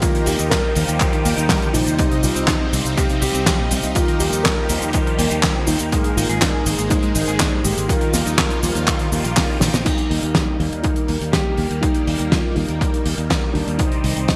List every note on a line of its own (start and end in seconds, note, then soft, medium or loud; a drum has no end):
0.00 0.73 D#3 loud
0.00 0.12 D#3 medium
0.00 1.97 F3 medium
0.00 3.92 G3 medium
0.00 1.95 A#3 medium
0.00 5.88 D#4 medium
0.00 0.73 D#4 medium
0.00 0.25 F4 loud
0.00 0.73 F4 medium
0.00 1.97 G4 medium
0.00 0.73 G4 medium
0.00 0.73 A#4 loud
0.00 kick loud
0.00 closed hi-hat medium
0.00 cabasa medium
0.15 0.26 D#3 medium
0.15 closed hi-hat medium
0.26 0.37 D#2 medium
0.26 0.37 A#3 loud
0.26 0.52 G4 loud
0.26 open hi-hat loud
0.26 cabasa medium
0.39 0.49 D#2 medium
0.39 0.49 D#4 loud
0.39 closed hi-hat medium
0.39 cabasa medium
0.50 0.63 G3 medium
0.50 1.78 A#4 loud
0.50 kick loud
0.50 snare loud
0.50 clap medium
0.50 closed hi-hat medium
0.50 cabasa medium
0.64 0.74 D#4 medium
0.75 0.86 D#2 medium
0.75 0.82 D#3 medium
0.75 1.23 D#3 medium
0.75 1.23 D#4 medium
0.75 1.23 F4 medium
0.75 1.23 G4 medium
0.75 1.23 C5 medium
0.75 open hi-hat loud
0.75 cabasa medium
0.88 0.99 D#2 medium
0.88 0.99 D#3 medium
0.88 closed hi-hat medium
0.88 cabasa medium
1.00 1.10 D#3 medium
1.00 kick loud
1.00 clap medium
1.00 closed hi-hat medium
1.00 cabasa medium
1.13 1.23 D#3 loud
1.13 closed hi-hat medium
1.25 1.35 D#2 medium
1.25 1.72 D#3 medium
1.25 1.35 A#3 loud
1.25 1.72 D#4 medium
1.25 1.72 F4 medium
1.25 1.72 G4 medium
1.25 1.72 A#4 medium
1.25 open hi-hat loud
1.25 cabasa medium
1.37 1.48 D#2 medium
1.37 1.47 D#4 loud
1.37 closed hi-hat medium
1.37 cabasa medium
1.49 1.62 G3 medium
1.49 kick loud
1.49 snare loud
1.49 clap medium
1.49 open hi-hat medium
1.49 cabasa medium
1.62 1.72 D3 medium
1.62 closed hi-hat medium
1.73 1.85 A#1 medium
1.73 1.96 C3 loud
1.73 1.84 D#3 medium
1.73 2.25 D#4 loud
1.73 1.96 D#4 medium
1.73 1.96 F4 medium
1.73 1.96 G4 medium
1.73 1.96 C5 loud
1.73 open hi-hat loud
1.73 cabasa medium
1.87 1.97 D#2 medium
1.87 1.98 D#3 medium
1.87 closed hi-hat medium
1.87 cabasa medium
1.99 2.09 C3 medium
1.99 2.70 C3 loud
1.99 3.94 C4 medium
1.99 2.70 D#4 medium
1.99 2.70 G4 medium
1.99 2.70 C5 medium
1.99 2.70 D#5 loud
1.99 kick loud
1.99 closed hi-hat medium
1.99 cabasa soft
2.11 2.23 C3 medium
2.11 closed hi-hat medium
2.22 2.34 C2 loud
2.22 2.33 G3 loud
2.22 2.48 F4 loud
2.22 open hi-hat loud
2.22 cabasa medium
2.36 2.46 C2 medium
2.36 2.46 C4 loud
2.36 closed hi-hat medium
2.36 cabasa medium
2.47 2.60 F3 medium
2.47 2.98 D#4 medium
2.47 kick loud
2.47 snare loud
2.47 clap medium
2.47 closed hi-hat medium
2.47 cabasa soft
2.61 2.70 C4 medium
2.73 2.83 C2 medium
2.73 2.79 C3 medium
2.73 3.93 C3 medium
2.73 3.93 D#4 medium
2.73 3.93 G4 medium
2.73 3.93 C5 medium
2.73 3.93 F5 medium
2.73 open hi-hat loud
2.73 cabasa medium
2.85 2.95 C2 medium
2.85 2.96 C3 medium
2.85 closed hi-hat medium
2.85 cabasa medium
2.96 3.07 C3 medium
2.96 3.02 G4 loud
2.96 kick loud
2.96 closed hi-hat medium
2.96 cabasa soft
3.10 3.19 C3 loud
3.10 closed hi-hat medium
3.21 3.32 C2 loud
3.21 3.32 G3 loud
3.21 3.97 G4 loud
3.21 open hi-hat loud
3.21 cabasa medium
3.34 3.44 C2 medium
3.34 3.44 C4 loud
3.34 closed hi-hat medium
3.34 cabasa medium
3.46 3.58 F3 medium
3.46 kick loud
3.46 snare loud
3.46 clap loud
3.46 closed hi-hat medium
3.46 cabasa soft
3.59 3.69 A#2 medium
3.71 3.81 C2 medium
3.71 3.81 C3 medium
3.71 open hi-hat loud
3.71 cabasa medium
3.83 3.94 C2 medium
3.83 3.95 C3 medium
3.83 closed hi-hat medium
3.83 cabasa medium
3.95 4.06 D#3 medium
3.95 4.67 D#3 loud
3.95 5.91 F3 medium
3.95 5.91 G3 medium
3.95 7.85 A#3 medium
3.95 4.67 D#4 medium
3.95 4.21 F4 loud
3.95 4.67 F4 medium
3.95 5.91 G4 medium
3.95 4.67 G4 medium
3.95 4.67 A#4 loud
3.95 kick loud
3.95 closed hi-hat medium
3.95 cabasa medium
4.08 4.20 D#3 medium
4.08 closed hi-hat medium
4.19 4.31 D#2 loud
4.19 4.30 A#3 loud
4.19 4.43 G4 medium
4.19 open hi-hat loud
4.19 cabasa medium
4.33 4.43 D#2 medium
4.33 4.42 D#4 loud
4.33 closed hi-hat medium
4.33 cabasa medium
4.44 4.57 G3 medium
4.44 5.71 A#4 loud
4.44 kick loud
4.44 snare loud
4.44 clap medium
4.44 closed hi-hat medium
4.44 cabasa soft
4.57 4.67 D#4 medium
4.69 4.80 D#2 medium
4.69 5.90 D#3 medium
4.69 4.75 D#3 medium
4.69 5.90 D#4 medium
4.69 5.90 F4 medium
4.69 5.90 G4 medium
4.69 5.90 C5 medium
4.69 open hi-hat loud
4.69 cabasa medium
4.82 4.92 D#2 medium
4.82 4.93 D#3 medium
4.82 closed hi-hat medium
4.82 cabasa medium
4.93 5.04 D#3 medium
4.93 kick loud
4.93 closed hi-hat medium
4.93 cabasa soft
5.06 5.16 D#3 loud
5.06 closed hi-hat medium
5.19 5.29 D#2 medium
5.19 5.29 A#3 loud
5.19 open hi-hat loud
5.19 cabasa medium
5.31 5.41 D#2 medium
5.31 5.41 D#4 loud
5.31 closed hi-hat medium
5.31 cabasa medium
5.43 5.55 G3 medium
5.43 kick loud
5.43 snare loud
5.43 clap medium
5.43 closed hi-hat medium
5.43 cabasa medium
5.56 5.65 D3 medium
5.67 5.78 D#2 medium
5.67 5.78 D#3 medium
5.67 6.18 D#4 medium
5.67 open hi-hat loud
5.67 cabasa medium
5.79 5.90 D#2 medium
5.79 5.92 D#3 medium
5.79 closed hi-hat medium
5.79 cabasa medium
5.92 6.63 G#2 loud
5.92 7.87 D#3 loud
5.92 6.02 G#3 medium
5.92 7.87 G#3 medium
5.92 6.63 A#3 medium
5.92 6.63 D#4 medium
5.92 6.63 G#4 medium
5.92 6.63 A#4 loud
5.92 kick loud
5.92 closed hi-hat loud
5.92 cabasa soft
6.04 6.16 G#3 medium
6.04 closed hi-hat medium
6.16 6.27 G#1 medium
6.16 6.27 D#4 loud
6.16 6.39 F4 medium
6.16 open hi-hat loud
6.16 cabasa medium
6.29 6.39 G#1 medium
6.29 6.39 G#4 loud
6.29 closed hi-hat medium
6.29 cabasa medium
6.40 6.53 D4 medium
6.40 6.88 D#4 medium
6.40 kick loud
6.40 snare loud
6.40 clap medium
6.40 closed hi-hat loud
6.40 cabasa soft
6.54 6.64 G#4 medium
6.66 6.76 G#1 medium
6.66 7.86 G#2 medium
6.66 6.72 G#3 medium
6.66 7.86 A#3 medium
6.66 7.86 D#4 medium
6.66 7.86 G#4 medium
6.66 7.86 C5 medium
6.66 open hi-hat loud
6.66 cabasa medium
6.78 6.89 G#1 medium
6.78 6.90 G#3 medium
6.78 closed hi-hat medium
6.78 cabasa medium
6.90 7.01 G#3 medium
6.90 7.60 D#4 medium
6.90 kick loud
6.90 closed hi-hat medium
6.90 cabasa soft
7.03 7.13 G#3 loud
7.03 closed hi-hat soft
7.15 7.26 G#1 loud
7.15 7.25 D#4 loud
7.15 open hi-hat loud
7.15 cabasa medium
7.28 7.38 G#1 medium
7.28 7.38 G#4 loud
7.28 closed hi-hat medium
7.28 cabasa medium
7.40 7.52 D4 medium
7.40 kick loud
7.40 snare loud
7.40 clap medium
7.40 closed hi-hat loud
7.40 cabasa soft
7.52 7.62 G3 medium
7.63 7.75 G#1 medium
7.63 7.74 G#3 medium
7.63 7.87 G4 medium
7.63 open hi-hat loud
7.63 cabasa medium
7.77 7.87 G#1 medium
7.77 7.89 G#3 medium
7.77 closed hi-hat medium
7.77 cabasa medium
7.88 7.99 D#3 medium
7.88 8.60 D#3 loud
7.88 9.84 D#3 medium
7.88 9.84 F3 medium
7.88 9.84 G3 medium
7.88 9.84 A#3 medium
7.88 8.60 D#4 medium
7.88 9.57 F4 medium
7.88 8.60 F4 medium
7.88 9.84 F4 loud
7.88 8.60 G4 medium
7.88 8.60 A#4 loud
7.88 kick loud
7.88 closed hi-hat medium
7.88 cabasa soft
8.01 8.13 D#3 medium
8.01 closed hi-hat medium
8.14 8.24 D#2 medium
8.14 8.24 A#3 loud
8.14 snare medium
8.14 open hi-hat loud
8.14 cabasa medium
8.26 8.36 D#2 medium
8.26 8.36 D#4 loud
8.26 closed hi-hat medium
8.26 cabasa medium
8.38 8.50 G3 medium
8.38 kick loud
8.38 snare loud
8.38 clap medium
8.38 closed hi-hat medium
8.38 cabasa medium
8.50 8.61 D#4 medium
8.50 closed hi-hat medium
8.63 8.73 D#2 medium
8.63 8.69 D#3 medium
8.63 9.10 D#3 medium
8.63 9.10 D#4 medium
8.63 9.10 F4 medium
8.63 9.10 G4 medium
8.63 9.10 C5 medium
8.63 open hi-hat loud
8.63 cabasa medium
8.75 8.85 D#2 medium
8.75 8.87 D#3 medium
8.75 closed hi-hat medium
8.75 cabasa medium
8.87 8.97 D#3 medium
8.87 kick loud
8.87 clap medium
8.87 closed hi-hat loud
8.87 cabasa medium
8.99 9.10 D#3 loud
8.99 closed hi-hat medium
9.12 9.22 D#2 medium
9.12 9.58 D#3 medium
9.12 9.18 D#3 medium
9.12 9.58 D#4 medium
9.12 9.58 F4 medium
9.12 9.58 G4 medium
9.12 9.58 A#4 loud
9.12 open hi-hat loud
9.12 cabasa medium
9.24 9.35 A#1 medium
9.24 9.30 D#3 medium
9.24 closed hi-hat medium
9.24 cabasa medium
9.37 9.47 D#3 medium
9.37 kick loud
9.37 snare loud
9.37 clap medium
9.37 open hi-hat medium
9.37 cabasa soft
9.49 9.55 D#4 medium
9.60 9.71 A#1 medium
9.60 9.73 D#3 medium
9.60 9.83 D#3 medium
9.60 9.66 D4 medium
9.60 9.83 D#4 medium
9.60 9.83 F4 medium
9.60 9.83 G4 medium
9.60 9.83 C5 loud
9.60 snare medium
9.60 open hi-hat loud
9.60 cabasa medium
9.74 9.84 A#1 medium
9.74 9.80 A#3 medium
9.74 snare loud
9.74 closed hi-hat medium
9.74 cabasa medium
9.85 14.36 D#3 loud
9.85 14.36 G3 medium
9.85 10.57 G3 loud
9.85 13.75 A#3 medium
9.85 10.57 A#3 medium
9.85 10.80 D#4 medium
9.85 10.57 D#4 medium
9.85 10.57 G4 loud
9.85 kick loud
9.85 closed hi-hat medium
9.85 crash loud
9.98 closed hi-hat medium
10.11 10.21 D#2 medium
10.11 open hi-hat loud
10.23 10.33 D#2 medium
10.23 closed hi-hat medium
10.35 kick loud
10.35 snare loud
10.35 closed hi-hat medium
10.60 10.70 D#2 medium
10.60 11.80 G3 medium
10.60 11.80 A#3 medium
10.60 11.80 D#4 medium
10.60 11.80 A#4 medium
10.60 open hi-hat medium
10.72 10.82 D#2 medium
10.72 closed hi-hat medium
10.83 11.34 D#4 loud
10.83 kick loud
10.83 closed hi-hat medium
10.96 closed hi-hat soft
11.08 11.19 D#2 medium
11.08 open hi-hat loud
11.21 11.31 D#2 medium
11.21 closed hi-hat medium
11.32 11.83 G4 loud
11.32 kick loud
11.32 snare loud
11.32 closed hi-hat medium
11.57 11.68 D#2 medium
11.57 open hi-hat medium
11.71 11.81 D#2 medium
11.71 closed hi-hat medium
11.81 12.54 G3 loud
11.81 12.54 A#3 medium
11.81 12.33 D#4 loud
11.81 12.54 D#4 medium
11.81 12.54 G4 loud
11.81 kick loud
11.81 closed hi-hat medium
11.95 closed hi-hat medium
12.07 12.17 D#2 medium
12.07 open hi-hat loud
12.19 12.30 D#2 medium
12.19 closed hi-hat medium
12.30 12.54 F4 medium
12.30 kick loud
12.30 snare loud
12.30 closed hi-hat medium
12.55 12.67 D#2 medium
12.55 13.77 G3 medium
12.55 13.77 A#3 medium
12.55 13.01 D#4 medium
12.55 13.77 D#4 medium
12.55 13.77 A#4 medium
12.55 open hi-hat medium
12.69 12.79 D#2 medium
12.69 closed hi-hat medium
12.81 kick loud
12.81 closed hi-hat medium
12.94 closed hi-hat medium
13.06 13.16 D#2 medium
13.06 open hi-hat loud
13.18 13.28 D#2 medium
13.18 closed hi-hat medium
13.30 kick loud
13.30 snare loud
13.30 closed hi-hat medium
13.53 13.65 D#2 medium
13.53 13.79 D4 medium
13.53 open hi-hat medium
13.67 13.77 D#2 medium
13.67 closed hi-hat medium
13.78 14.36 C3 loud
13.78 14.36 C4 medium
13.78 14.36 D#4 medium
13.78 14.36 G4 medium
13.78 14.36 C5 medium
13.78 14.36 D#5 loud
13.78 kick loud
13.78 closed hi-hat medium
13.92 closed hi-hat soft
14.04 14.14 C2 medium
14.04 open hi-hat loud
14.16 14.26 C2 medium
14.16 closed hi-hat medium
14.28 kick loud
14.28 snare loud
14.28 closed hi-hat medium